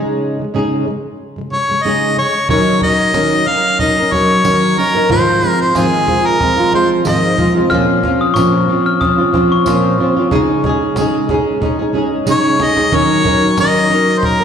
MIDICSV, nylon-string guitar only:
0, 0, Header, 1, 2, 480
1, 0, Start_track
1, 0, Key_signature, -5, "major"
1, 0, Tempo, 652174
1, 1836, Time_signature, 4, 2, 24, 8
1, 10630, End_track
2, 0, Start_track
2, 0, Title_t, "Nylon-string guitar"
2, 0, Program_c, 0, 24
2, 0, Note_on_c, 0, 49, 74
2, 0, Note_on_c, 0, 56, 83
2, 0, Note_on_c, 0, 61, 79
2, 0, Note_on_c, 0, 63, 89
2, 0, Note_on_c, 0, 68, 83
2, 280, Note_off_c, 0, 49, 0
2, 289, Note_on_c, 0, 49, 50
2, 292, Note_off_c, 0, 56, 0
2, 294, Note_off_c, 0, 61, 0
2, 294, Note_off_c, 0, 63, 0
2, 296, Note_off_c, 0, 68, 0
2, 307, Note_on_c, 0, 56, 55
2, 388, Note_off_c, 0, 49, 0
2, 390, Note_off_c, 0, 56, 0
2, 397, Note_on_c, 0, 49, 70
2, 399, Note_on_c, 0, 56, 75
2, 402, Note_on_c, 0, 61, 85
2, 404, Note_on_c, 0, 63, 71
2, 410, Note_on_c, 0, 68, 84
2, 621, Note_off_c, 0, 49, 0
2, 630, Note_on_c, 0, 49, 57
2, 638, Note_off_c, 0, 56, 0
2, 639, Note_off_c, 0, 61, 0
2, 640, Note_off_c, 0, 63, 0
2, 644, Note_off_c, 0, 68, 0
2, 645, Note_on_c, 0, 56, 68
2, 830, Note_off_c, 0, 49, 0
2, 838, Note_off_c, 0, 56, 0
2, 1003, Note_on_c, 0, 49, 50
2, 1019, Note_on_c, 0, 56, 52
2, 1103, Note_off_c, 0, 49, 0
2, 1111, Note_on_c, 0, 49, 65
2, 1119, Note_off_c, 0, 56, 0
2, 1128, Note_on_c, 0, 56, 70
2, 1235, Note_off_c, 0, 49, 0
2, 1244, Note_on_c, 0, 49, 46
2, 1250, Note_off_c, 0, 56, 0
2, 1259, Note_on_c, 0, 56, 55
2, 1352, Note_off_c, 0, 49, 0
2, 1354, Note_off_c, 0, 56, 0
2, 1360, Note_on_c, 0, 49, 72
2, 1363, Note_on_c, 0, 56, 72
2, 1364, Note_on_c, 0, 61, 71
2, 1367, Note_on_c, 0, 63, 72
2, 1370, Note_on_c, 0, 68, 74
2, 1587, Note_off_c, 0, 49, 0
2, 1596, Note_on_c, 0, 49, 52
2, 1599, Note_off_c, 0, 56, 0
2, 1600, Note_off_c, 0, 61, 0
2, 1601, Note_off_c, 0, 63, 0
2, 1603, Note_off_c, 0, 68, 0
2, 1612, Note_on_c, 0, 56, 57
2, 1792, Note_off_c, 0, 49, 0
2, 1800, Note_off_c, 0, 56, 0
2, 1832, Note_on_c, 0, 51, 73
2, 1836, Note_on_c, 0, 54, 81
2, 1838, Note_on_c, 0, 61, 78
2, 1841, Note_on_c, 0, 63, 73
2, 1843, Note_on_c, 0, 70, 83
2, 2062, Note_off_c, 0, 54, 0
2, 2070, Note_off_c, 0, 61, 0
2, 2071, Note_on_c, 0, 54, 59
2, 2073, Note_off_c, 0, 51, 0
2, 2074, Note_off_c, 0, 63, 0
2, 2079, Note_off_c, 0, 70, 0
2, 2079, Note_on_c, 0, 61, 57
2, 2083, Note_on_c, 0, 63, 59
2, 2086, Note_on_c, 0, 70, 59
2, 2301, Note_off_c, 0, 54, 0
2, 2306, Note_off_c, 0, 61, 0
2, 2307, Note_off_c, 0, 63, 0
2, 2307, Note_on_c, 0, 51, 70
2, 2310, Note_on_c, 0, 54, 67
2, 2311, Note_off_c, 0, 70, 0
2, 2315, Note_on_c, 0, 61, 71
2, 2316, Note_on_c, 0, 63, 67
2, 2320, Note_on_c, 0, 70, 80
2, 2537, Note_off_c, 0, 54, 0
2, 2544, Note_off_c, 0, 61, 0
2, 2546, Note_on_c, 0, 54, 55
2, 2550, Note_off_c, 0, 51, 0
2, 2552, Note_off_c, 0, 63, 0
2, 2553, Note_on_c, 0, 61, 55
2, 2555, Note_off_c, 0, 70, 0
2, 2561, Note_on_c, 0, 63, 65
2, 2564, Note_on_c, 0, 70, 58
2, 2784, Note_off_c, 0, 54, 0
2, 2788, Note_off_c, 0, 61, 0
2, 2792, Note_on_c, 0, 54, 57
2, 2793, Note_off_c, 0, 63, 0
2, 2797, Note_on_c, 0, 61, 57
2, 2799, Note_off_c, 0, 70, 0
2, 2802, Note_on_c, 0, 63, 63
2, 2810, Note_on_c, 0, 70, 62
2, 2920, Note_off_c, 0, 70, 0
2, 2925, Note_off_c, 0, 54, 0
2, 2927, Note_off_c, 0, 61, 0
2, 2927, Note_off_c, 0, 63, 0
2, 2929, Note_on_c, 0, 70, 48
2, 2936, Note_on_c, 0, 63, 52
2, 2945, Note_on_c, 0, 61, 40
2, 3031, Note_off_c, 0, 61, 0
2, 3035, Note_off_c, 0, 70, 0
2, 3035, Note_on_c, 0, 54, 60
2, 3039, Note_off_c, 0, 63, 0
2, 3040, Note_on_c, 0, 61, 59
2, 3047, Note_on_c, 0, 63, 60
2, 3052, Note_on_c, 0, 70, 63
2, 3264, Note_off_c, 0, 54, 0
2, 3265, Note_off_c, 0, 61, 0
2, 3267, Note_on_c, 0, 51, 73
2, 3268, Note_off_c, 0, 63, 0
2, 3271, Note_off_c, 0, 70, 0
2, 3273, Note_on_c, 0, 54, 77
2, 3274, Note_on_c, 0, 61, 80
2, 3277, Note_on_c, 0, 63, 75
2, 3280, Note_on_c, 0, 70, 73
2, 3497, Note_off_c, 0, 54, 0
2, 3504, Note_off_c, 0, 61, 0
2, 3506, Note_on_c, 0, 54, 52
2, 3509, Note_off_c, 0, 63, 0
2, 3510, Note_off_c, 0, 51, 0
2, 3513, Note_on_c, 0, 61, 53
2, 3514, Note_off_c, 0, 70, 0
2, 3517, Note_on_c, 0, 63, 58
2, 3523, Note_on_c, 0, 70, 56
2, 3633, Note_off_c, 0, 70, 0
2, 3641, Note_off_c, 0, 54, 0
2, 3642, Note_off_c, 0, 63, 0
2, 3642, Note_on_c, 0, 70, 55
2, 3645, Note_off_c, 0, 61, 0
2, 3650, Note_on_c, 0, 63, 50
2, 3656, Note_on_c, 0, 61, 39
2, 3745, Note_on_c, 0, 44, 82
2, 3750, Note_on_c, 0, 51, 77
2, 3751, Note_off_c, 0, 70, 0
2, 3752, Note_off_c, 0, 61, 0
2, 3752, Note_on_c, 0, 53, 82
2, 3753, Note_off_c, 0, 63, 0
2, 3755, Note_on_c, 0, 56, 77
2, 3756, Note_on_c, 0, 60, 77
2, 3758, Note_on_c, 0, 65, 93
2, 3977, Note_off_c, 0, 53, 0
2, 3984, Note_off_c, 0, 56, 0
2, 3986, Note_on_c, 0, 53, 55
2, 3988, Note_off_c, 0, 60, 0
2, 3989, Note_off_c, 0, 44, 0
2, 3991, Note_off_c, 0, 51, 0
2, 3993, Note_on_c, 0, 56, 59
2, 3995, Note_off_c, 0, 65, 0
2, 3996, Note_on_c, 0, 60, 62
2, 4003, Note_on_c, 0, 65, 67
2, 4224, Note_off_c, 0, 53, 0
2, 4224, Note_on_c, 0, 44, 68
2, 4225, Note_off_c, 0, 56, 0
2, 4225, Note_off_c, 0, 60, 0
2, 4227, Note_off_c, 0, 65, 0
2, 4230, Note_on_c, 0, 51, 67
2, 4233, Note_on_c, 0, 53, 74
2, 4233, Note_on_c, 0, 56, 76
2, 4234, Note_on_c, 0, 60, 79
2, 4236, Note_on_c, 0, 65, 81
2, 4457, Note_off_c, 0, 53, 0
2, 4461, Note_off_c, 0, 56, 0
2, 4465, Note_on_c, 0, 53, 52
2, 4467, Note_off_c, 0, 60, 0
2, 4468, Note_off_c, 0, 44, 0
2, 4470, Note_on_c, 0, 56, 61
2, 4471, Note_off_c, 0, 51, 0
2, 4472, Note_off_c, 0, 65, 0
2, 4475, Note_on_c, 0, 60, 62
2, 4481, Note_on_c, 0, 65, 57
2, 4696, Note_off_c, 0, 53, 0
2, 4703, Note_off_c, 0, 56, 0
2, 4705, Note_on_c, 0, 53, 55
2, 4707, Note_off_c, 0, 60, 0
2, 4712, Note_on_c, 0, 56, 61
2, 4713, Note_off_c, 0, 65, 0
2, 4716, Note_on_c, 0, 60, 62
2, 4722, Note_on_c, 0, 65, 60
2, 4829, Note_off_c, 0, 65, 0
2, 4837, Note_off_c, 0, 60, 0
2, 4838, Note_on_c, 0, 65, 54
2, 4840, Note_off_c, 0, 53, 0
2, 4842, Note_off_c, 0, 56, 0
2, 4846, Note_on_c, 0, 60, 47
2, 4850, Note_on_c, 0, 56, 47
2, 4855, Note_on_c, 0, 53, 44
2, 4935, Note_off_c, 0, 53, 0
2, 4944, Note_off_c, 0, 56, 0
2, 4944, Note_on_c, 0, 53, 67
2, 4948, Note_off_c, 0, 60, 0
2, 4949, Note_off_c, 0, 65, 0
2, 4953, Note_on_c, 0, 56, 70
2, 4957, Note_on_c, 0, 60, 63
2, 4962, Note_on_c, 0, 65, 71
2, 5178, Note_off_c, 0, 56, 0
2, 5179, Note_off_c, 0, 53, 0
2, 5182, Note_off_c, 0, 65, 0
2, 5182, Note_on_c, 0, 44, 70
2, 5183, Note_off_c, 0, 60, 0
2, 5186, Note_on_c, 0, 51, 68
2, 5187, Note_on_c, 0, 56, 83
2, 5188, Note_on_c, 0, 53, 70
2, 5191, Note_on_c, 0, 60, 80
2, 5191, Note_on_c, 0, 65, 74
2, 5413, Note_off_c, 0, 53, 0
2, 5419, Note_off_c, 0, 56, 0
2, 5422, Note_off_c, 0, 60, 0
2, 5422, Note_on_c, 0, 53, 55
2, 5426, Note_off_c, 0, 44, 0
2, 5427, Note_on_c, 0, 56, 58
2, 5428, Note_off_c, 0, 51, 0
2, 5431, Note_off_c, 0, 65, 0
2, 5431, Note_on_c, 0, 60, 57
2, 5439, Note_on_c, 0, 65, 63
2, 5544, Note_off_c, 0, 65, 0
2, 5552, Note_off_c, 0, 60, 0
2, 5553, Note_on_c, 0, 65, 51
2, 5556, Note_off_c, 0, 56, 0
2, 5558, Note_off_c, 0, 53, 0
2, 5561, Note_on_c, 0, 60, 51
2, 5564, Note_on_c, 0, 56, 48
2, 5570, Note_on_c, 0, 53, 42
2, 5665, Note_off_c, 0, 53, 0
2, 5666, Note_off_c, 0, 65, 0
2, 5668, Note_on_c, 0, 46, 87
2, 5670, Note_off_c, 0, 60, 0
2, 5672, Note_off_c, 0, 56, 0
2, 5674, Note_on_c, 0, 53, 88
2, 5677, Note_on_c, 0, 60, 95
2, 5677, Note_on_c, 0, 61, 81
2, 5680, Note_on_c, 0, 65, 95
2, 5901, Note_off_c, 0, 53, 0
2, 5907, Note_off_c, 0, 61, 0
2, 5909, Note_off_c, 0, 46, 0
2, 5910, Note_on_c, 0, 53, 66
2, 5914, Note_off_c, 0, 60, 0
2, 5915, Note_off_c, 0, 65, 0
2, 5916, Note_on_c, 0, 61, 75
2, 5922, Note_on_c, 0, 60, 78
2, 5925, Note_on_c, 0, 65, 77
2, 6144, Note_off_c, 0, 53, 0
2, 6145, Note_off_c, 0, 61, 0
2, 6147, Note_on_c, 0, 46, 77
2, 6149, Note_off_c, 0, 60, 0
2, 6150, Note_off_c, 0, 65, 0
2, 6152, Note_on_c, 0, 53, 86
2, 6154, Note_on_c, 0, 61, 92
2, 6158, Note_on_c, 0, 60, 93
2, 6159, Note_on_c, 0, 65, 87
2, 6379, Note_off_c, 0, 53, 0
2, 6385, Note_off_c, 0, 61, 0
2, 6388, Note_on_c, 0, 53, 64
2, 6389, Note_off_c, 0, 46, 0
2, 6389, Note_off_c, 0, 60, 0
2, 6394, Note_on_c, 0, 61, 68
2, 6395, Note_off_c, 0, 65, 0
2, 6398, Note_on_c, 0, 60, 73
2, 6407, Note_on_c, 0, 65, 64
2, 6617, Note_off_c, 0, 53, 0
2, 6625, Note_off_c, 0, 61, 0
2, 6626, Note_on_c, 0, 53, 72
2, 6629, Note_off_c, 0, 60, 0
2, 6633, Note_off_c, 0, 65, 0
2, 6633, Note_on_c, 0, 61, 67
2, 6638, Note_on_c, 0, 60, 74
2, 6642, Note_on_c, 0, 65, 72
2, 6749, Note_off_c, 0, 65, 0
2, 6758, Note_on_c, 0, 65, 56
2, 6760, Note_off_c, 0, 53, 0
2, 6760, Note_off_c, 0, 60, 0
2, 6764, Note_off_c, 0, 61, 0
2, 6769, Note_on_c, 0, 60, 52
2, 6775, Note_on_c, 0, 61, 45
2, 6863, Note_off_c, 0, 61, 0
2, 6864, Note_on_c, 0, 53, 74
2, 6868, Note_off_c, 0, 60, 0
2, 6868, Note_off_c, 0, 65, 0
2, 6872, Note_on_c, 0, 61, 80
2, 6877, Note_on_c, 0, 60, 83
2, 6881, Note_on_c, 0, 65, 74
2, 7102, Note_off_c, 0, 53, 0
2, 7104, Note_off_c, 0, 61, 0
2, 7107, Note_off_c, 0, 60, 0
2, 7108, Note_on_c, 0, 46, 87
2, 7109, Note_off_c, 0, 65, 0
2, 7111, Note_on_c, 0, 53, 84
2, 7113, Note_on_c, 0, 61, 91
2, 7115, Note_on_c, 0, 60, 79
2, 7118, Note_on_c, 0, 65, 89
2, 7341, Note_off_c, 0, 53, 0
2, 7348, Note_off_c, 0, 61, 0
2, 7350, Note_off_c, 0, 46, 0
2, 7350, Note_on_c, 0, 53, 66
2, 7353, Note_off_c, 0, 60, 0
2, 7354, Note_off_c, 0, 65, 0
2, 7357, Note_on_c, 0, 61, 62
2, 7362, Note_on_c, 0, 60, 67
2, 7364, Note_on_c, 0, 65, 74
2, 7473, Note_off_c, 0, 65, 0
2, 7481, Note_off_c, 0, 60, 0
2, 7482, Note_off_c, 0, 53, 0
2, 7482, Note_on_c, 0, 65, 63
2, 7486, Note_off_c, 0, 61, 0
2, 7490, Note_on_c, 0, 60, 51
2, 7496, Note_on_c, 0, 61, 49
2, 7585, Note_off_c, 0, 61, 0
2, 7590, Note_on_c, 0, 49, 96
2, 7591, Note_off_c, 0, 65, 0
2, 7593, Note_on_c, 0, 56, 105
2, 7594, Note_on_c, 0, 61, 94
2, 7595, Note_off_c, 0, 60, 0
2, 7598, Note_on_c, 0, 63, 101
2, 7601, Note_on_c, 0, 68, 96
2, 7825, Note_off_c, 0, 56, 0
2, 7828, Note_off_c, 0, 61, 0
2, 7831, Note_off_c, 0, 49, 0
2, 7833, Note_on_c, 0, 56, 68
2, 7835, Note_off_c, 0, 63, 0
2, 7836, Note_off_c, 0, 68, 0
2, 7836, Note_on_c, 0, 61, 76
2, 7844, Note_on_c, 0, 63, 73
2, 7848, Note_on_c, 0, 68, 86
2, 8067, Note_off_c, 0, 56, 0
2, 8070, Note_off_c, 0, 61, 0
2, 8072, Note_on_c, 0, 49, 92
2, 8073, Note_off_c, 0, 63, 0
2, 8075, Note_off_c, 0, 68, 0
2, 8075, Note_on_c, 0, 56, 82
2, 8079, Note_on_c, 0, 61, 88
2, 8082, Note_on_c, 0, 63, 85
2, 8084, Note_on_c, 0, 68, 88
2, 8302, Note_off_c, 0, 56, 0
2, 8309, Note_off_c, 0, 61, 0
2, 8311, Note_on_c, 0, 56, 69
2, 8312, Note_off_c, 0, 49, 0
2, 8314, Note_off_c, 0, 63, 0
2, 8316, Note_off_c, 0, 68, 0
2, 8317, Note_on_c, 0, 61, 77
2, 8323, Note_on_c, 0, 63, 73
2, 8324, Note_on_c, 0, 68, 80
2, 8533, Note_off_c, 0, 56, 0
2, 8541, Note_off_c, 0, 61, 0
2, 8542, Note_on_c, 0, 56, 66
2, 8548, Note_off_c, 0, 63, 0
2, 8550, Note_on_c, 0, 61, 69
2, 8552, Note_off_c, 0, 68, 0
2, 8556, Note_on_c, 0, 63, 70
2, 8561, Note_on_c, 0, 68, 77
2, 8668, Note_off_c, 0, 68, 0
2, 8677, Note_on_c, 0, 68, 55
2, 8678, Note_off_c, 0, 63, 0
2, 8679, Note_off_c, 0, 56, 0
2, 8683, Note_off_c, 0, 61, 0
2, 8687, Note_on_c, 0, 63, 53
2, 8693, Note_on_c, 0, 61, 49
2, 8779, Note_off_c, 0, 61, 0
2, 8781, Note_on_c, 0, 56, 72
2, 8782, Note_off_c, 0, 63, 0
2, 8788, Note_on_c, 0, 61, 73
2, 8789, Note_off_c, 0, 68, 0
2, 8791, Note_on_c, 0, 63, 85
2, 8797, Note_on_c, 0, 68, 76
2, 9020, Note_off_c, 0, 56, 0
2, 9020, Note_off_c, 0, 61, 0
2, 9024, Note_on_c, 0, 49, 85
2, 9025, Note_off_c, 0, 63, 0
2, 9027, Note_off_c, 0, 68, 0
2, 9028, Note_on_c, 0, 56, 88
2, 9029, Note_on_c, 0, 61, 80
2, 9033, Note_on_c, 0, 63, 83
2, 9036, Note_on_c, 0, 68, 98
2, 9255, Note_off_c, 0, 56, 0
2, 9261, Note_off_c, 0, 61, 0
2, 9264, Note_on_c, 0, 56, 62
2, 9267, Note_off_c, 0, 63, 0
2, 9268, Note_off_c, 0, 49, 0
2, 9270, Note_off_c, 0, 68, 0
2, 9270, Note_on_c, 0, 61, 62
2, 9276, Note_on_c, 0, 63, 73
2, 9279, Note_on_c, 0, 68, 72
2, 9386, Note_off_c, 0, 68, 0
2, 9395, Note_on_c, 0, 68, 62
2, 9397, Note_off_c, 0, 63, 0
2, 9400, Note_off_c, 0, 56, 0
2, 9403, Note_off_c, 0, 61, 0
2, 9406, Note_on_c, 0, 63, 52
2, 9413, Note_on_c, 0, 61, 53
2, 9506, Note_off_c, 0, 61, 0
2, 9508, Note_off_c, 0, 68, 0
2, 9509, Note_on_c, 0, 51, 86
2, 9510, Note_off_c, 0, 63, 0
2, 9514, Note_on_c, 0, 54, 85
2, 9515, Note_on_c, 0, 61, 81
2, 9518, Note_on_c, 0, 63, 89
2, 9520, Note_on_c, 0, 70, 90
2, 9736, Note_off_c, 0, 54, 0
2, 9742, Note_off_c, 0, 61, 0
2, 9744, Note_on_c, 0, 54, 60
2, 9749, Note_off_c, 0, 63, 0
2, 9751, Note_off_c, 0, 51, 0
2, 9751, Note_off_c, 0, 70, 0
2, 9751, Note_on_c, 0, 61, 72
2, 9758, Note_on_c, 0, 63, 69
2, 9759, Note_on_c, 0, 70, 66
2, 9985, Note_off_c, 0, 54, 0
2, 9986, Note_off_c, 0, 61, 0
2, 9989, Note_off_c, 0, 63, 0
2, 9990, Note_on_c, 0, 51, 74
2, 9993, Note_on_c, 0, 54, 74
2, 9994, Note_off_c, 0, 70, 0
2, 9995, Note_on_c, 0, 61, 79
2, 9998, Note_on_c, 0, 63, 84
2, 10003, Note_on_c, 0, 70, 81
2, 10219, Note_off_c, 0, 54, 0
2, 10226, Note_off_c, 0, 61, 0
2, 10227, Note_on_c, 0, 54, 58
2, 10230, Note_off_c, 0, 63, 0
2, 10232, Note_off_c, 0, 51, 0
2, 10232, Note_off_c, 0, 70, 0
2, 10235, Note_on_c, 0, 61, 60
2, 10239, Note_on_c, 0, 63, 63
2, 10241, Note_on_c, 0, 70, 70
2, 10593, Note_off_c, 0, 70, 0
2, 10599, Note_off_c, 0, 63, 0
2, 10602, Note_on_c, 0, 70, 58
2, 10603, Note_off_c, 0, 54, 0
2, 10606, Note_off_c, 0, 61, 0
2, 10630, Note_off_c, 0, 70, 0
2, 10630, End_track
0, 0, End_of_file